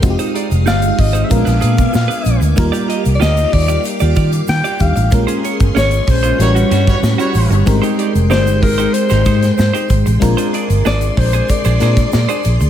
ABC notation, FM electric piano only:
X:1
M:4/4
L:1/8
Q:1/4=94
K:Bbmix
V:1 name="FM electric piano"
[A,CEF_G=G]4 [A,_C_D=DFB]4 | [G,B,EFB]6- [G,B,EFB] [G,DEFG] | [A,B,_DFB]4 [G,^C=E^FB=B]4 | [A,CEGB]8 |
[A,CDFB]4- [A,CDFB] [A,CDFB]3 |]